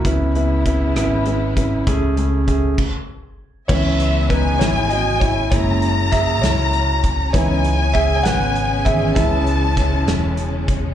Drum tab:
CC |------|---x--|x-----|------|
HH |xxxxxx|xxx---|-xxxxx|xxxxxx|
SD |---r--|--r---|---o--|--oo--|
BD |o-o--o|o-oo--|o-o--o|o-o--o|

CC |------|------|
HH |xxxxxx|xxxxxx|
SD |---o--|--oo--|
BD |o-o--o|o-o--o|